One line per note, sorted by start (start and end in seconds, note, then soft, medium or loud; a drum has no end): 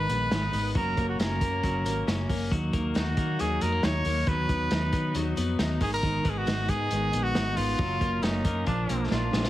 0.00 0.75 D#3 medium
0.00 0.31 D#4 soft
0.00 0.71 B4 loud
0.08 0.27 A#1 medium
0.08 0.31 G#3 soft
0.08 0.32 B3 soft
0.08 0.31 D#4 soft
0.08 closed hi-hat medium
0.31 0.49 G#1 medium
0.31 0.53 G#2 medium
0.31 0.53 D#3 medium
0.31 0.54 G#3 medium
0.31 0.53 B3 medium
0.31 0.42 C#4 medium
0.31 0.51 D#4 medium
0.31 snare medium
0.31 closed hi-hat medium
0.42 0.80 D#4 medium
0.52 0.75 G#1 loud
0.52 0.76 G#3 soft
0.52 0.76 B3 soft
0.52 0.75 D#4 medium
0.52 open hi-hat medium
0.75 0.93 F#1 medium
0.75 0.97 F#2 medium
0.75 0.98 C#3 medium
0.75 0.98 F#3 medium
0.75 0.97 A#3 medium
0.75 0.95 C#4 medium
0.75 1.06 A#4 medium
0.75 kick loud
0.75 closed hi-hat medium
0.96 1.15 F#1 medium
0.96 1.19 F#3 soft
0.96 1.20 A#3 medium
0.96 1.19 C#4 medium
0.96 kick medium
0.96 closed hi-hat medium
1.09 1.19 F#4 medium
1.19 1.37 F#1 loud
1.19 1.41 F#2 medium
1.19 1.41 C#3 medium
1.19 1.42 F#3 medium
1.19 1.41 A#3 medium
1.19 1.39 C#4 medium
1.19 2.04 A#4 medium
1.19 snare medium
1.19 closed hi-hat medium
1.40 1.59 F#2 medium
1.40 1.63 F#3 soft
1.40 1.64 A#3 soft
1.40 1.63 C#4 soft
1.40 kick medium
1.40 closed hi-hat medium
1.63 1.86 F#1 medium
1.63 1.85 C#3 medium
1.63 1.86 F#3 medium
1.63 1.85 A#3 medium
1.63 1.84 C#4 medium
1.63 kick medium
1.63 closed hi-hat medium
1.85 2.03 G#1 medium
1.85 2.07 F#3 soft
1.85 2.08 A#3 soft
1.85 2.07 C#4 medium
1.85 closed hi-hat medium
2.07 2.25 F#1 medium
2.07 2.29 F#2 medium
2.07 2.30 C#3 medium
2.07 2.30 F#3 medium
2.07 2.30 A#3 medium
2.07 2.28 C#4 medium
2.07 snare medium
2.07 closed hi-hat medium
2.29 2.47 F#1 medium
2.29 2.51 F#3 soft
2.29 2.51 A#3 medium
2.29 2.51 C#4 medium
2.29 kick medium
2.29 open hi-hat medium
2.51 2.69 D#2 medium
2.51 2.73 D#3 medium
2.51 2.74 F#3 medium
2.51 2.73 A#3 medium
2.51 2.71 D#4 medium
2.51 kick loud
2.51 closed hi-hat medium
2.73 2.91 D#2 medium
2.73 2.94 F#3 soft
2.73 2.95 A#3 soft
2.73 2.95 D#4 medium
2.73 kick medium
2.73 closed hi-hat medium
2.94 3.14 D#2 medium
2.94 3.17 D#3 medium
2.94 3.17 F#3 medium
2.94 3.17 A#3 medium
2.94 3.16 D#4 medium
2.94 3.42 F#4 medium
2.94 snare medium
2.94 closed hi-hat medium
3.17 3.35 D#3 medium
3.17 3.39 F#3 soft
3.17 3.40 A#3 soft
3.17 3.39 D#4 medium
3.17 kick medium
3.17 closed hi-hat medium
3.39 3.58 D#2 medium
3.39 3.61 D#3 medium
3.39 3.62 F#3 medium
3.39 3.61 A#3 medium
3.39 3.59 D#4 medium
3.39 3.63 G#4 medium
3.39 closed hi-hat medium
3.60 3.80 F2 medium
3.60 3.82 F#3 soft
3.60 3.72 G#3 medium
3.60 3.83 A#3 soft
3.60 3.83 D#4 soft
3.60 3.86 A#4 medium
3.60 closed hi-hat medium
3.72 4.04 A#3 soft
3.82 4.01 D#2 medium
3.82 4.05 D#3 medium
3.82 4.05 F#3 medium
3.82 4.05 A#3 medium
3.82 4.03 D#4 medium
3.82 4.29 C#5 medium
3.82 snare medium
3.82 closed hi-hat medium
4.04 4.24 D#2 loud
4.04 4.26 F#3 soft
4.04 4.28 A#3 soft
4.04 4.27 D#4 soft
4.04 open hi-hat medium
4.26 4.49 D#3 medium
4.26 4.49 F#3 medium
4.26 4.48 B3 medium
4.26 4.46 D#4 medium
4.26 5.16 B4 medium
4.26 kick loud
4.26 closed hi-hat medium
4.48 4.67 D#2 medium
4.48 4.70 F#3 soft
4.48 4.71 B3 soft
4.48 4.70 D#4 soft
4.48 kick medium
4.48 closed hi-hat medium
4.71 4.89 D#2 medium
4.71 4.93 D#3 medium
4.71 4.93 F#3 medium
4.71 4.93 B3 medium
4.71 4.91 D#4 medium
4.71 snare medium
4.71 closed hi-hat medium
4.92 5.11 D#3 medium
4.92 5.14 F#3 soft
4.92 5.15 B3 soft
4.92 5.15 D#4 soft
4.92 kick medium
4.92 closed hi-hat medium
5.14 5.33 D#2 medium
5.14 5.36 D#3 medium
5.14 5.37 F#3 medium
5.14 5.37 B3 medium
5.14 5.35 D#4 medium
5.14 closed hi-hat medium
5.36 5.55 F2 medium
5.36 5.58 F#3 soft
5.36 5.59 B3 medium
5.36 5.59 D#4 medium
5.36 closed hi-hat medium
5.59 5.77 D#2 medium
5.59 5.81 D#3 medium
5.59 5.81 F#3 medium
5.59 5.81 B3 medium
5.59 5.79 D#4 medium
5.59 snare medium
5.59 closed hi-hat medium
5.81 6.17 G#1 medium
5.81 6.02 D#3 medium
5.81 6.04 B3 soft
5.81 6.03 D#4 soft
5.81 5.92 G#4 medium
5.81 kick medium
5.81 open hi-hat medium
5.94 6.31 A#4 loud
6.03 6.25 G#2 medium
6.03 6.25 D#3 medium
6.03 6.26 G#3 medium
6.03 6.25 B3 medium
6.03 6.23 D#4 medium
6.03 kick loud
6.03 closed hi-hat medium
6.24 6.43 G#1 medium
6.24 6.46 G#3 soft
6.24 6.46 B3 soft
6.24 6.47 D#4 soft
6.24 kick medium
6.24 closed hi-hat soft
6.29 6.39 G#4 medium
6.38 6.71 F#4 medium
6.46 6.65 G#1 loud
6.46 6.69 G#2 medium
6.46 6.69 D#3 medium
6.46 6.69 G#3 medium
6.46 6.69 B3 medium
6.46 6.67 D#4 medium
6.46 snare medium
6.46 closed hi-hat medium
6.68 6.87 G#2 medium
6.68 6.90 G#3 soft
6.68 6.91 B3 soft
6.68 6.91 D#4 medium
6.68 7.25 G#4 loud
6.68 kick medium
6.68 closed hi-hat medium
6.90 7.09 G#1 medium
6.90 7.12 D#3 medium
6.90 7.13 G#3 medium
6.90 7.12 B3 medium
6.90 7.10 D#4 medium
6.90 closed hi-hat medium
7.11 7.31 A#1 medium
7.11 7.34 G#3 soft
7.11 7.34 B3 soft
7.11 7.34 D#4 medium
7.11 closed hi-hat medium
7.23 7.58 F#4 loud
7.33 7.53 G#1 medium
7.33 7.56 G#2 medium
7.33 7.57 D#3 medium
7.33 7.57 G#3 medium
7.33 7.56 B3 medium
7.33 7.54 D#4 medium
7.33 snare medium
7.33 closed hi-hat medium
7.55 7.75 G#1 loud
7.55 7.78 G#3 soft
7.55 7.79 B3 soft
7.55 7.78 D#4 soft
7.55 8.24 F4 medium
7.55 open hi-hat medium
7.77 7.97 F#1 medium
7.77 8.00 F#2 medium
7.77 8.00 C#3 medium
7.77 8.01 F#3 medium
7.77 8.00 A#3 medium
7.77 7.98 C#4 medium
7.77 kick loud
7.77 closed hi-hat medium
8.00 8.19 F#1 medium
8.00 8.22 F#3 soft
8.00 8.22 A#3 medium
8.00 8.22 C#4 soft
8.00 kick medium
8.00 closed hi-hat medium
8.22 8.41 F#1 loud
8.22 8.44 F#2 medium
8.22 8.45 C#3 medium
8.22 8.45 F#3 medium
8.22 8.44 A#3 medium
8.22 8.42 C#4 medium
8.22 8.67 D#4 medium
8.22 snare medium
8.22 closed hi-hat medium
8.43 8.63 F#2 medium
8.43 8.67 F#3 soft
8.43 8.67 A#3 soft
8.43 8.66 C#4 soft
8.43 kick medium
8.43 closed hi-hat medium
8.65 8.85 A#1 medium
8.65 8.88 A#2 soft
8.65 8.89 F3 medium
8.65 8.88 A#3 medium
8.65 9.08 D4 medium
8.65 8.86 D4 medium
8.65 kick medium
8.65 closed hi-hat medium
8.87 9.07 B1 medium
8.87 9.09 F3 soft
8.87 9.10 A#3 medium
8.87 9.10 D4 soft
8.87 closed hi-hat medium
9.10 9.29 A#1 medium
9.10 9.32 A#2 medium
9.10 9.33 F3 medium
9.10 9.32 A#3 medium
9.10 9.30 D4 medium
9.10 9.50 F4 medium
9.10 snare soft
9.31 9.50 A#1 medium
9.31 9.50 F3 soft
9.31 9.45 G#3 medium
9.31 9.50 A#3 medium
9.31 9.50 D4 medium
9.31 snare medium
9.44 9.50 A#3 soft
9.44 snare medium